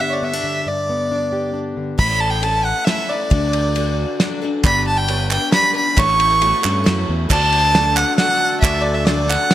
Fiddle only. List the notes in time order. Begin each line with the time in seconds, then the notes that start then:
0.00 E5
0.10 C#5 D5
0.24 E5
0.68 D5
1.99 B5
2.20 A5
2.30 G5
2.43 A5
2.65 F#5
2.85 E5
3.09 D5
4.65 B5
4.87 A5
4.98 G5
5.31 G5
5.53 B5
5.77 B5
5.99 C#6
7.30 A5
7.96 F#5
8.17 F#5
8.61 E5
8.82 D5
8.94 E5
9.05 D5
9.28 F#5